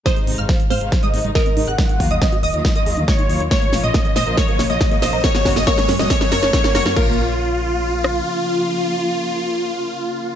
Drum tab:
CC |----------------|----------------|----------------|----------------|
HH |xxoxxxoxxxoxxxox|xxoxxxoxxxoxxxox|xxoxxxoxxxoxxxox|xxoxxxoxxxoxxxox|
SD |o---o---o---o---|o---o---o---o---|o-o-o-o-o-o-o-o-|oooooooooooooooo|
BD |o---o---o---o---|o-o-o---o---o---|o---o---o---o---|o-o-o---o---o---|

CC |x---------------|----------------|
HH |----------------|----------------|
SD |----------r-----|----------------|
BD |o---------------|----------------|